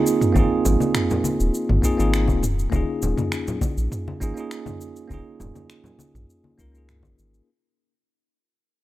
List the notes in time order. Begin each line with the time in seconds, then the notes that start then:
Already playing: A#3 C4 D#4 F4 G#4
0.07 shaker
0.21 mid tom, shaker
0.33 G#1 A#3 C4 D#4, kick, high conga, shaker
0.37 F4 G#4
0.65 G#1, low conga, shaker
0.80 high conga, shaker
0.95 finger snap, mid tom, shaker
1.10 low conga, shaker
1.24 high conga, shaker
1.40 D#1, shaker
1.54 shaker
1.69 G#1, mid tom, high conga
1.82 A#3 C4 D#4 F4 G#4, kick, shaker
1.97 G#1 A#3 C4 D#4 F4 G#4, shaker
2.14 finger snap, shaker
2.28 D#1, kick, high conga, shaker
2.43 mid tom, shaker
2.59 shaker
2.70 D#1 A#3 C#4 D#4, kick, high conga, shaker
2.75 F4 G#4
3.02 D#1, low conga, shaker
3.18 mid tom, high conga, shaker
3.32 finger snap, shaker
3.48 low conga, shaker
3.61 kick, high conga, shaker
3.77 A#1, shaker
3.92 mid tom, shaker
4.08 high conga
4.20 G#1 A#3 C#4 D#4 F4 G#4, kick, shaker
4.34 A#3 C#4 D#4, shaker
4.39 F4 G#4
4.51 finger snap, shaker
4.66 mid tom, high conga, shaker
4.81 shaker
4.96 shaker
5.08 D#1 A#3 C#4 D#4, kick, high conga, shaker
5.12 F4 G#4
5.40 D#1, mid tom, low conga, shaker
5.55 high conga, shaker
5.70 finger snap, shaker
5.84 low conga, shaker
5.99 high conga, shaker
6.15 A#1, mid tom, shaker
6.30 shaker
6.44 high conga
6.58 C#2 A#3 C#4 D#4 F4 A#4, kick, shaker
6.72 A#3 C#4 D#4, shaker
6.76 F4 G#4
6.89 finger snap, mid tom, shaker
7.03 G#1, kick, high conga, shaker
7.19 G#1, shaker
7.34 shaker